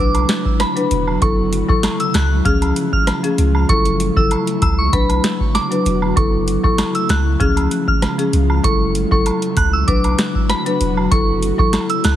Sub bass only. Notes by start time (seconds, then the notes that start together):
0.00 B1
0.91 E1
1.22 F#1
1.69 A1
2.15 C#2
2.45 C#2
3.38 C#2
3.69 F#1
4.17 F#1
4.62 C#2
4.93 B1
5.86 E1
6.17 F#1
6.64 A1
7.09 C#2
7.40 C#2
8.33 C#2
8.64 F#1
9.12 F#1
9.57 C#2
9.88 B1
10.81 E1
11.12 F#1
11.59 A1
12.04 C#2